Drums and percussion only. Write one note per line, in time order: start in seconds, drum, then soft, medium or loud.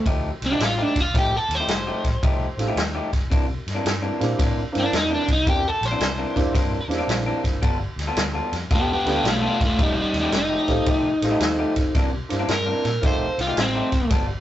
0.06 kick loud
0.06 ride medium
0.42 snare soft
0.42 ride medium
0.60 snare loud
0.60 ride medium
0.96 kick medium
0.96 snare soft
0.96 ride medium
1.14 kick loud
1.14 snare soft
1.14 ride medium
1.51 snare soft
1.51 ride medium
1.68 snare loud
1.68 ride medium
2.04 kick medium
2.04 snare soft
2.04 ride medium
2.23 kick loud
2.23 ride medium
2.59 snare soft
2.59 ride medium
2.77 snare loud
2.77 ride medium
3.13 kick medium
3.13 snare soft
3.13 ride medium
3.32 kick loud
3.32 ride medium
3.68 snare soft
3.68 ride medium
3.86 snare loud
3.86 ride medium
4.21 snare soft
4.21 ride medium
4.39 kick loud
4.39 snare soft
4.39 ride medium
4.75 snare soft
4.75 ride medium
4.93 snare loud
4.93 ride medium
5.28 kick medium
5.28 snare soft
5.28 ride medium
5.47 kick loud
5.47 ride medium
5.83 snare soft
5.83 ride medium
6.00 snare loud
6.00 ride medium
6.36 kick medium
6.36 snare soft
6.36 ride medium
6.55 kick loud
6.55 snare soft
6.55 ride medium
6.91 snare soft
6.91 ride medium
7.09 snare loud
7.09 ride medium
7.44 kick medium
7.44 snare soft
7.44 ride medium
7.62 kick loud
7.62 ride medium
7.99 snare soft
7.99 ride medium
8.17 snare loud
8.17 ride medium
8.53 snare soft
8.53 ride medium
8.71 kick loud
8.71 snare soft
8.71 ride medium
9.06 snare soft
9.06 ride medium
9.25 snare loud
9.25 ride medium
9.61 kick medium
9.61 snare soft
9.61 ride medium
9.79 kick loud
9.79 ride medium
10.14 snare soft
10.14 ride medium
10.32 snare loud
10.32 ride medium
10.68 kick medium
10.68 snare soft
10.68 ride medium
10.86 kick loud
10.86 ride medium
11.22 snare soft
11.22 ride medium
11.40 snare loud
11.40 ride medium
11.76 kick medium
11.76 snare soft
11.76 ride medium
11.95 kick loud
11.95 snare soft
11.95 ride medium
12.30 snare soft
12.30 ride medium
12.48 snare loud
12.48 ride medium
12.85 snare soft
12.85 ride medium
13.03 kick loud
13.03 snare soft
13.03 ride medium
13.39 snare soft
13.39 ride medium
13.57 snare loud
13.57 ride medium
13.92 kick medium
13.92 snare soft
13.92 ride medium
14.10 kick loud
14.10 snare soft
14.10 ride medium